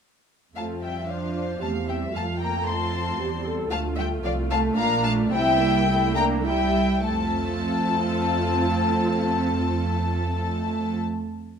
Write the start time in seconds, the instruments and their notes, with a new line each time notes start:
0.56 double bass section F2, cello section A3, viola section C4 F4, violin section F5 A5
0.82 cello section G3, violin section E5 G5
1.08 cello section F3, viola section D4 F4, violin section C5 F5
1.60 double bass section E2, cello section A3, viola section C4 G4, violin section F5 A5
1.88 cello section G3, violin section E5 G5
2.12 double bass section F2, viola section A3 F4, cello section A3, violin section F5 A5
2.39 cello section A#3, violin section G5 A#5
2.65 cello section C4, viola section F4, violin section A5 C6
3.18 double bass section E2, viola section G3 G4
3.45 viola section A4
3.71 double bass section D2, viola section A3 F4, cello section A3, violin section F5 A5
3.96 cello section G3, violin section E5 G5
4.23 double bass section C2, cello section F3, viola section A3, violin section D5 F5
4.50 cello section A3, violin section F5 A5
4.76 double bass section A#1, cello section A#3, viola section D4 F4, violin section F5 A#5
5.03 cello section A3, violin section F5 A5
5.30 double bass section C2, cello section G3, viola section C4 E4, violin section E5 G5
5.59 viola section A#3
5.88 viola section A3 E4
6.16 cello section A#3, viola section D4, violin section G5 A#5
6.45 cello section G3, viola section G3 E4, violin section E5 G5
7.05 double bass section F2, cello section A3, viola section C4 F4, violin section A4 A5